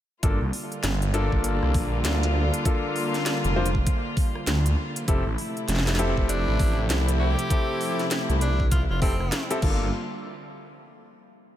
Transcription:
0.23 G1 D3 G3 A#3 D4 F4 A4, kick, closed hi-hat
0.41 C2
0.53 open hi-hat
0.72 closed hi-hat
0.83 G1, snare, closed hi-hat
1.02 closed hi-hat
1.14 A#3 D4 F4 A4, closed hi-hat
1.32 G1, kick
1.44 closed hi-hat
1.63 C2, cross-stick
1.74 A#1, kick, cross-stick, open hi-hat
2.05 D2, snare, closed hi-hat
2.23 closed hi-hat
2.35 cross-stick
2.54 closed hi-hat
2.65 A#3 D4 F4 A4, kick, closed hi-hat
2.96 open hi-hat
3.14 snare, closed hi-hat
3.26 snare, closed hi-hat
3.44 F1, closed hi-hat
3.56 A#3 D4 F4 C5
3.66 closed hi-hat
3.75 kick
3.87 kick, closed hi-hat
4.17 kick, open hi-hat
4.35 cross-stick
4.47 D2, snare, closed hi-hat
4.66 closed hi-hat
4.96 closed hi-hat
5.08 F1 C3 F3 A3 C4 E4 G4 A4, kick, closed hi-hat
5.27 A1
5.38 open hi-hat
5.57 closed hi-hat
5.68 F1, snare, closed hi-hat
5.75 snare
5.79 snare
5.87 snare, closed hi-hat
5.89 snare
5.95 snare
5.99 C4 E4 G4 A4, closed hi-hat
6.17 F1, kick
6.29 D4, closed hi-hat
6.48 A1
6.59 A1, kick, cross-stick, open hi-hat
6.90 C2, snare, closed hi-hat
7.08 closed hi-hat
7.20 G4, cross-stick
7.25 cross-stick
7.30 cross-stick
7.34 cross-stick
7.39 closed hi-hat
7.50 C4 E4 G4 A4, kick, closed hi-hat
7.81 open hi-hat
7.99 snare, closed hi-hat
8.11 snare, closed hi-hat
8.29 C2, closed hi-hat
8.41 D4, closed hi-hat
8.60 kick
8.71 C2 F4, kick, closed hi-hat
8.90 F1 F4
9.02 C4 E4 G4 A4, kick, open hi-hat
9.20 cross-stick
9.32 snare, closed hi-hat
9.51 C4 E4 G4 A4, closed hi-hat
9.62 G1 D3 G3 A#3 D4 F4 A4, kick, crash

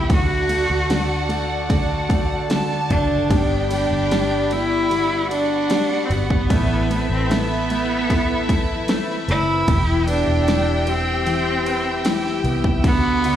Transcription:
Already playing: E3 E4 G4
0.09 D2 D3 A3 D4 F#4 A4 D5 F#5 A5, kick, ride
0.13 F#4
0.49 A3 D4 A4, ride
0.70 D2
0.89 D3 A3 D4 F#4 A4, snare, ride
1.29 A3 D4 F#4 A4, ride
1.69 D3 A3 D4 F#4 A4, kick, ride
2.09 A3, kick, ride
2.49 D3 A3 D4 F#4 A4 A5, snare, ride
2.71 snare
2.89 F#1 A3 D4 F#4 A4, kick, ride
3.30 G1 G2 D3 G3 B3 D4 G4 D5 G5 B5, kick, ride
3.70 G3 B3 D4 G4, ride
3.91 G1
4.10 G3 B3 D4 G4, snare, ride
4.50 G3 B3 D4 E4 G4, ride
4.90 G2 D3 G3 B3 D4 F#4 G4 F#5, ride
5.30 G3 D4, ride
5.69 G3 B3 D4 G4, snare, ride
5.91 snare
6.05 C4
6.10 G1 G3 B3, ride
6.30 kick
6.49 A1 A2 E3 A3 E4 A4 B4 E5 B5, kick, ride
6.89 A3 C4 E4 B4, ride
7.10 A1 C4
7.29 A3 B3 E4 B4, snare, ride
7.70 A3, ride
8.09 A2 E3 A3 E4 B4, kick, ride
8.49 A3, kick, ride
8.88 A3 C4 E4 B4, snare, ride
9.10 snare
9.28 F#1 A3 C4 E4 B4, ride
9.67 E1 E3 G3 B3 G4 E5 G5 E6, kick, ride
10.07 B3 D4 G4 B4, ride
10.27 E1
10.47 E3 G3 G4, snare, ride
10.87 G3 C4, ride
11.26 E3 G3 G4, ride
11.66 B4, ride
12.04 E3 G3 G4, snare, ride
12.26 snare
12.43 C2 B3 G4, ride
12.64 kick
12.83 D2 D3 A3 B3 D4 F#4 A4 F#5 D6, kick, ride
13.23 D3 D4 F#4 A4, ride

